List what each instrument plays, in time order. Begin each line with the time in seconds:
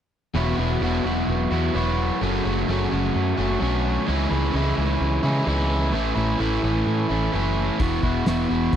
0.34 picked electric bass E1, overdriven electric guitar E2 B2 F#3 B3 E4 F#4
0.57 picked electric bass E1, overdriven electric guitar F#3 B3 E4 F#4
0.81 picked electric bass E1, overdriven electric guitar E2 B2 F#3 B3 E4 F#4
1.04 picked electric bass E1, overdriven electric guitar B3 E4 F#4
1.08 overdriven electric guitar F#3
1.28 picked electric bass E1
1.51 picked electric bass E2, overdriven electric guitar F#3 B3 E4 F#4
1.74 picked electric bass E1, overdriven electric guitar F#3 B3 E4 F#4
2.21 picked electric bass F#1, overdriven electric guitar F#2 C#3 F#3 A3 C#4 F#4
2.44 picked electric bass F#1, overdriven electric guitar F#3 A3 C#4 F#4
2.68 picked electric bass F#1, overdriven electric guitar F#2 C#3 F#3 A3 C#4 F#4
2.90 picked electric bass F#1, overdriven electric guitar F#3 A3 C#4 F#4
3.16 picked electric bass F#2
3.37 picked electric bass F#1, overdriven electric guitar F#3 A3 C#4 F#4
3.60 picked electric bass B1, overdriven electric guitar F#3 A3 C#4 F#4
4.07 picked electric bass C#2, overdriven electric guitar C#3 E3 G#3 C#4 E4
4.30 picked electric bass C#2, overdriven electric guitar G#3 C#4 E4
4.53 picked electric bass C#2, overdriven electric guitar C#3 E3 G#3 C#4 E4
4.77 picked electric bass C#2, overdriven electric guitar G#3 C#4 E4
5.01 picked electric bass C#2
5.23 picked electric bass C#3, overdriven electric guitar G#3 C#4 E4
5.45 picked electric bass C#2, overdriven electric guitar E3 G#3 C#4 E4
5.92 picked electric bass A1, overdriven electric guitar A2 E3 A3 C#4 E4
6.15 picked electric bass A1, overdriven electric guitar A3 C#4 E4
6.38 picked electric bass A1, overdriven electric guitar A2 E3 A3 C#4 E4
6.61 picked electric bass A1, overdriven electric guitar A3 C#4 E4
6.87 picked electric bass A2
7.08 picked electric bass A1, overdriven electric guitar A3 C#4 E4
7.32 picked electric bass F#1, overdriven electric guitar E3 A3 C#4 E4
7.79 picked electric bass E1, overdriven electric guitar E2 B2 E3 B3 E4 F#4, kick, open hi-hat
8.02 picked electric bass E1, overdriven electric guitar E3 B3 E4 F#4, kick
8.25 picked electric bass E1, overdriven electric guitar E2 B2 E3 B3 E4 F#4, snare, open hi-hat
8.49 picked electric bass E1, overdriven electric guitar E3 B3 E4 F#4
8.73 picked electric bass E1, kick, open hi-hat